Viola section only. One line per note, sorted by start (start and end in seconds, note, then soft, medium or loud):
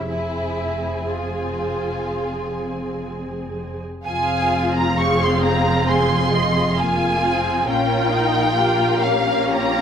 0.09 3.80 C4 soft
0.09 3.80 G#4 soft
4.06 6.74 C4 medium
4.06 4.96 F4 medium
5.00 5.87 G#4 medium
5.89 6.76 G#4 medium
6.78 7.22 A#3 medium
6.78 7.66 F4 medium
7.23 7.67 C4 medium
7.67 8.11 C#4 medium
7.67 8.52 F4 medium
8.11 8.54 D#4 medium
8.55 9.00 F4 medium
8.55 9.49 G4 medium
9.02 9.81 C#4 medium
9.49 9.81 F4 medium